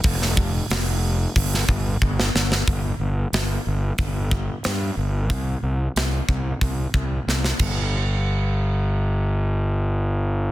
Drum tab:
CC |----------------|----------------|--------------x-|----------------|
HH |o---o---o-------|o---o---o---o---|o---o---o-------|----------------|
SD |-o--o----o---ooo|----o-------o---|----o-------oo--|----------------|
BD |o-o-----o-o-o---|o-------o-o-----|o-----o-o-o---o-|----------------|